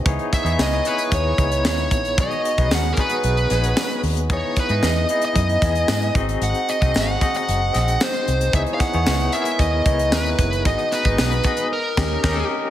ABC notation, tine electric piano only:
X:1
M:4/4
L:1/16
Q:1/4=113
K:C#dor
V:1 name="Tine electric piano"
[B,DEGc]3 [B,DEGc]3 [B,DEGc]4 [B,DEGc]4- [B,DEGc] z | [B,DFGc]3 [B,DFGB]3 [B,DFGB]4 [B,DFGc]4- [B,DFGc] z | [B,DEGd]3 [B,DEGd]3 [B,DEGd]4 [B,EGdg]4 [^B,DFGd]2- | [^B,DFGd]2 z [B,DFGd]3 [B,DFGd]4 [B,DFGd]4- [B,DFGd] z |
[B,DEGc]3 [B,DEGc]3 [B,DEGA]4 [B,DEGc]4- [B,DEGc] z | [B,DFGd]3 [B,DFGd]3 [B,DFGd]2 z2 [CD=GAd]2 [CDGAd]2 z2 |]